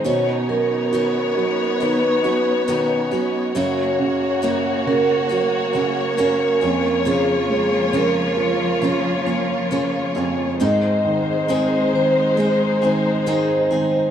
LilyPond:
<<
  \new Staff \with { instrumentName = "Vibraphone" } { \time 4/4 \key fis \major \tempo 4 = 68 cis''8 ais'4. b'4. r8 | cis''4. ais'4. ais'4 | gis'4 ais'4 cis''4. r8 | dis''4. bis'4. bis'4 | }
  \new Staff \with { instrumentName = "String section" } { \time 4/4 \key fis \major << { <b cis''>1 | <ais cis''>1~ | <ais cis''>1 | <gis bis'>1 | } \\ { dis'1 | fis'2.~ fis'8 <eis eis'>8~ | <eis eis'>1 | dis'1 | } >> }
  \new Staff \with { instrumentName = "Steel-string acoustic guitar" } { \time 4/4 \key fis \major <b, dis b cis' fis'>4 <b, dis b cis' fis'>4 <dis b cis' fis'>8 <b cis' fis'>8 <b, dis b cis' fis'>8 <b cis' fis'>8 | <fis, cis fis ais cis' fis'>4 <fis, cis fis ais cis' fis'>4 <fis ais cis' fis'>8 <fis ais cis' fis'>8 <fis, cis fis ais cis' fis'>8 <ais cis' gis'>8 | <eis ais cis' gis'>4 <eis ais cis' gis'>4 <eis ais cis' gis'>8 <ais cis' gis'>8 <eis ais cis' gis'>8 <ais cis' gis'>8 | <gis, dis gis bis dis' gis'>4 <gis, dis gis bis dis' gis'>4 <gis bis dis' gis'>8 <gis bis dis' gis'>8 <gis, dis gis bis dis' gis'>8 <gis bis dis' gis'>8 | }
  \new Staff \with { instrumentName = "Felt piano" } { \clef bass \time 4/4 \key fis \major b,8 fis8 fis'8 fis8 dis'8 fis8 dis'8 fis8 | fis,8 cis8 ais8 cis8 fis8 cis8 cis'8 eis,8 | cis8 gis8 cis8 eis8 cis8 ais8 cis8 eis,8 | gis,8 dis8 bis8 dis8 gis8 dis8 dis'8 dis8 | }
>>